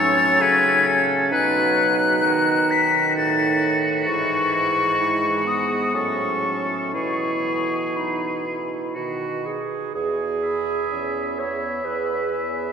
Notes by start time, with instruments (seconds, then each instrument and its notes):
Already playing: bassoon A2, french horn F#3, clarinet C#4, oboe C#5, flute A6
0.40 bassoon C#3, clarinet C#4, oboe B4, flute G#6
0.87 oboe A4
1.31 bassoon B2, french horn F#3, clarinet D#4, oboe B4, flute F#6
2.23 french horn D#3, oboe F#4
2.71 flute B6
3.15 bassoon A2, flute A6
4.06 bassoon G#2, french horn E3, clarinet E4, flute C#6
4.98 french horn G#3, clarinet E4
5.46 clarinet B3, flute D#6
5.94 bassoon A2, french horn F#3, clarinet C#4, oboe A4, flute C#6
6.94 bassoon B2, french horn E3, clarinet E4, oboe G#4, flute C#6
7.95 clarinet D#4, flute B5
8.45 clarinet E4
8.95 bassoon B2, french horn D#3, oboe F#4, clarinet F#4
9.46 clarinet G#4
9.95 bassoon E2, clarinet G#4
10.43 oboe E5, flute B5
10.91 bassoon E2, french horn C#4
11.38 french horn B3, clarinet C#5, oboe E5, flute B5
11.85 bassoon E2, french horn G#4, clarinet B4
12.32 oboe E5, flute B5